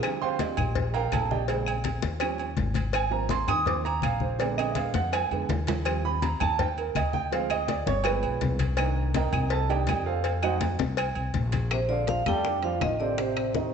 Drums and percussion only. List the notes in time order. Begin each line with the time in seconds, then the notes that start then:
0.03 cowbell, high conga, low agogo, claves
0.21 high conga
0.39 cowbell, high conga, low agogo
0.57 high conga, low conga, low agogo, claves
0.75 cowbell, high conga, low conga
0.94 high conga, low agogo
1.12 cowbell, high conga, low timbale, low agogo, claves
1.31 high conga
1.48 cowbell, high conga, low agogo
1.66 high conga, low agogo, claves
1.84 cowbell, high conga, low agogo
2.02 cowbell, high conga
2.20 cowbell, high conga, low agogo, claves
2.38 high conga, low agogo
2.57 cowbell, high conga, low timbale
2.74 cowbell, high conga, low agogo
2.93 cowbell, high conga, low agogo, claves
3.11 high conga
3.29 cowbell, high conga, low agogo
3.48 high conga, low conga, low agogo, claves
3.66 cowbell, high conga, low conga
3.84 high conga, low agogo
4.02 cowbell, high conga, low agogo, claves
4.20 high conga
4.39 cowbell, high conga, high timbale, low agogo
4.58 high conga, high timbale, low agogo, claves
4.75 cowbell, high conga, low agogo
4.94 cowbell, high conga
5.13 cowbell, high conga, low timbale, low agogo, claves
5.31 high conga, low agogo
5.49 cowbell, high conga, low timbale
5.67 cowbell, high conga, low timbale, low agogo
5.85 cowbell, high conga, low agogo, claves
6.05 high conga
6.22 cowbell, high conga, low agogo
6.40 high conga, low conga, low agogo, claves
6.59 cowbell, high conga, low conga
6.77 high conga, low agogo
6.95 cowbell, high conga, low agogo, claves
7.13 high conga
7.32 cowbell, high conga, low agogo
7.50 high conga, low agogo, claves
7.68 cowbell, high conga, low agogo
7.87 cowbell, high conga
8.04 cowbell, high conga, low agogo, claves
8.23 high conga, low agogo
8.41 cowbell, high conga, low timbale
8.59 cowbell, high conga, low agogo
8.77 cowbell, low agogo, claves
8.96 high conga
9.14 cowbell, high conga, low agogo
9.33 high conga, low conga, low agogo, claves
9.50 cowbell, high conga
9.69 high conga, low agogo
9.87 cowbell, high conga, low timbale, low agogo, claves
10.24 cowbell, high conga, low agogo
10.43 high conga, low agogo, claves
10.61 cowbell, high conga, low agogo
10.79 cowbell, high conga
10.97 cowbell, high conga, low agogo, claves
11.15 high conga, low agogo
11.34 cowbell, high conga
11.52 cowbell, high conga, low agogo
11.71 high bongo, high conga, high timbale, claves
11.89 high bongo, high conga
12.07 high bongo, high conga, high timbale
12.26 high bongo, high conga, low conga, high timbale, claves
12.45 high bongo, high conga
12.63 high conga, high timbale
12.81 high bongo, low bongo, high conga, high timbale, low timbale, claves
13.00 high bongo
13.18 high bongo, high conga, high timbale
13.37 high bongo, high conga, high timbale, claves
13.54 high bongo, high conga